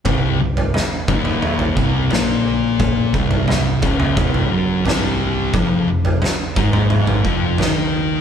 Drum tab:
SD |----o-------o---|----o-------o---|----o-------o---|
T2 |----o--oo-------|----o--oo-------|----o--oo-------|
FT |o--o--o--o--o---|o--o--o--o--o---|o--o--o--o--o---|
BD |o-----o---o-----|o-o---o-o-------|o-----o---o-----|